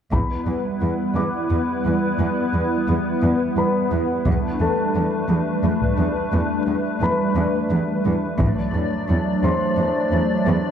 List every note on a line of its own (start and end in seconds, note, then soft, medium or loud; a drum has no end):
0.12 0.20 E2 soft
0.12 4.23 G3 medium
0.12 4.23 B3 medium
0.12 4.22 E4 medium
0.12 4.22 B4 medium
0.12 2.15 B5 soft
0.12 taiko soft
0.47 0.55 E2 soft
0.82 0.90 E2 soft
1.15 1.24 E2 soft
1.15 3.19 D6 soft
1.51 1.59 E2 soft
1.85 1.93 E2 soft
2.20 2.28 E2 soft
2.54 2.62 E2 soft
2.88 2.96 E2 soft
3.23 3.31 E2 soft
3.57 3.65 E2 soft
3.57 5.61 B4 soft
3.57 5.61 B5 soft
3.92 4.00 E2 soft
4.25 4.34 E2 medium
4.25 8.36 G3 medium
4.25 8.39 A3 medium
4.25 8.39 D4 medium
4.25 8.36 B4 medium
4.25 taiko soft
4.60 4.68 E2 soft
4.60 6.64 A4 soft
4.60 6.64 A5 soft
4.95 5.03 E2 soft
5.30 5.38 E2 soft
5.64 5.72 E2 soft
5.81 taiko soft
5.98 6.06 E2 soft
6.33 6.41 E2 medium
6.67 6.75 E2 soft
7.02 7.10 E2 soft
7.02 9.06 B4 soft
7.02 9.05 B5 soft
7.36 7.44 E2 medium
7.71 7.79 E2 soft
8.05 8.13 E2 soft
8.40 8.48 E2 medium
8.40 10.71 F#3 medium
8.40 10.71 A3 medium
8.40 10.71 D4 medium
8.40 10.71 D5 medium
8.40 taiko medium
8.74 8.82 E2 soft
9.09 9.17 E2 soft
9.44 9.52 E2 medium
9.44 10.71 C5 soft
9.44 10.71 C6 soft
9.78 9.86 E2 soft
10.12 10.20 E2 soft
10.47 10.55 E2 medium